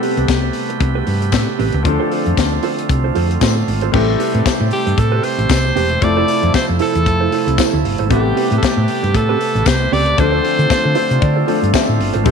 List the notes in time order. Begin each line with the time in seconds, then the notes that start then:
Already playing: C3 G3 A3 B3 C4 G4 A4 B4
0.02 C4 G4 B4, open hi-hat
0.17 C2 C4 G4 B4, closed hi-hat
0.28 C2, muted clean electric guitar stroke, kick, snare, closed hi-hat, tambourine
0.44 muted clean electric guitar stroke
0.53 open hi-hat
0.70 muted clean electric guitar stroke, closed hi-hat
0.80 C2, muted clean electric guitar stroke, kick, closed hi-hat
0.95 C4 G4 B4
1.07 G2, muted clean electric guitar stroke, open hi-hat
1.21 muted clean electric guitar stroke, closed hi-hat
1.32 A2, muted clean electric guitar stroke, kick, snare, closed hi-hat, tambourine
1.47 muted clean electric guitar stroke
1.59 A1 C4 G4 B4, open hi-hat
1.72 C#2, muted clean electric guitar stroke, closed hi-hat
1.83 D2 D3 F3 C4 D4 F4 A4, muted clean electric guitar stroke, kick, closed hi-hat
2.00 F4 A4 C5
2.11 F4 A4 C5, open hi-hat
2.26 F2, muted clean electric guitar stroke, closed hi-hat
2.37 D2, muted clean electric guitar stroke, kick, snare, closed hi-hat, tambourine
2.52 muted clean electric guitar stroke
2.63 F4 A4 C5, open hi-hat
2.78 muted clean electric guitar stroke, closed hi-hat
2.89 C2, muted clean electric guitar stroke, kick, closed hi-hat
3.04 F4 A4 C5
3.15 F2 F4 A4 C5, open hi-hat
3.30 muted clean electric guitar stroke, closed hi-hat
3.41 A2 F4 A4 C5, kick, snare, closed hi-hat, tambourine
3.57 muted clean electric guitar stroke
3.68 G#1, muted clean electric guitar stroke, open hi-hat
3.81 F4 A4 C5, closed hi-hat
3.92 A1 C3 G3 A3 C4 E4 G4 A4 B4, kick, crash
4.08 muted clean electric guitar stroke
4.19 C4 G4 B4, open hi-hat
4.34 A2 C4 G4 B4, closed hi-hat
4.46 muted fingered electric bass stroke, kick, snare, closed hi-hat, tambourine
4.61 A2, muted clean electric guitar stroke
4.71 G4, open hi-hat
4.86 G2, muted clean electric guitar stroke, closed hi-hat
4.98 A2 A4, muted clean electric guitar stroke, kick, closed hi-hat
5.12 C4 G4 B4
5.23 C5, muted clean electric guitar stroke, open hi-hat
5.38 A1, muted clean electric guitar stroke, closed hi-hat
5.49 C2, muted clean electric guitar stroke, kick, snare, closed hi-hat, tambourine
5.65 muted clean electric guitar stroke
5.76 E1 C4 G4 B4, open hi-hat
5.90 muted clean electric guitar stroke, closed hi-hat
6.01 F1 F3 A3 C4 E4 A4 D5, muted clean electric guitar stroke, kick, closed hi-hat
6.17 E4 A4 C5
6.28 E4 A4 C5, open hi-hat
6.43 F2, muted clean electric guitar stroke, closed hi-hat
6.54 C5, muted clean electric guitar stroke, kick, snare, closed hi-hat, tambourine
6.69 F2, muted clean electric guitar stroke
6.79 E4 A4 C5, open hi-hat
6.95 E2, muted clean electric guitar stroke, closed hi-hat
7.06 F2, muted clean electric guitar stroke, kick, closed hi-hat
7.21 E4 A4 C5
7.32 E4 A4 C5, open hi-hat
7.47 C2, muted clean electric guitar stroke, closed hi-hat
7.58 E4 A4 C5, kick, snare, closed hi-hat, tambourine
7.73 D2, muted clean electric guitar stroke
7.84 G1, muted clean electric guitar stroke, open hi-hat
7.98 G#1 E4 A4 C5, closed hi-hat
8.09 A1 C3 G3 B3 C4 E4 G4 A4 B4, kick, closed hi-hat
8.13 G4
8.25 muted clean electric guitar stroke
8.36 C4 G4 B4, open hi-hat
8.51 A2 C4 G4 B4, closed hi-hat
8.58 A4
8.63 G4, muted clean electric guitar stroke, kick, snare, closed hi-hat, tambourine
8.77 A2, muted clean electric guitar stroke
8.88 open hi-hat
9.03 G2, muted clean electric guitar stroke, closed hi-hat
9.14 A2 A4, muted clean electric guitar stroke, kick, closed hi-hat
9.29 C4 G4 B4
9.41 open hi-hat
9.55 A1, muted clean electric guitar stroke, closed hi-hat
9.66 C2 C5, muted clean electric guitar stroke, kick, snare, closed hi-hat, tambourine
9.81 muted clean electric guitar stroke
9.92 C#2 C4 G4 B4 D5, open hi-hat
10.06 muted clean electric guitar stroke, closed hi-hat
10.17 D2 D3 F3 A3 C4 D4 F4 A4 C5, muted clean electric guitar stroke, kick, closed hi-hat
10.32 F4 A4 C5
10.43 F4 A4 C5, open hi-hat
10.58 D3, muted clean electric guitar stroke, closed hi-hat
10.70 muted clean electric guitar stroke, muted fingered electric bass stroke, kick, snare, closed hi-hat, tambourine
10.84 D3, muted clean electric guitar stroke
10.95 F4 A4 C5, open hi-hat
11.11 C3, muted clean electric guitar stroke, closed hi-hat
11.21 D3 D5, muted clean electric guitar stroke, kick, closed hi-hat
11.36 F4 A4 C5
11.47 F3 A3 C4 D4 F4 A4 C5, open hi-hat
11.63 G2, muted clean electric guitar stroke, closed hi-hat
11.73 F4 A4 C5 E5, kick, snare, closed hi-hat, tambourine
11.88 A2, muted clean electric guitar stroke
11.99 G1, muted clean electric guitar stroke, open hi-hat
12.14 G#1 F4 A4 C5, closed hi-hat
12.24 A1 C3 G3 A3 C4 E4 G4 A4 B4, kick, closed hi-hat